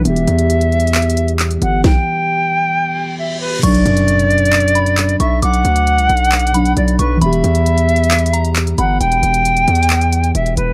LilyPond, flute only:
\new Staff \with { instrumentName = "Flute" } { \time 4/4 \key b \minor \tempo 4 = 134 e''2.~ e''8 fis''8 | g''2. e''8 b'8 | d''2.~ d''8 e''8 | fis''2. d''8 b'8 |
e''2.~ e''8 fis''8 | g''2. e''8 b'8 | }